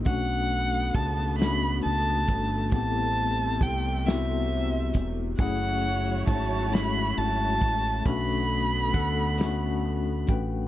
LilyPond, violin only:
\new Staff \with { instrumentName = "Violin" } { \time 6/8 \key b \minor \tempo 4. = 45 fis''4 a''8 b''8 a''4 | a''4 g''8 e''4 r8 | fis''4 a''8 b''8 a''4 | b''2~ b''8 r8 | }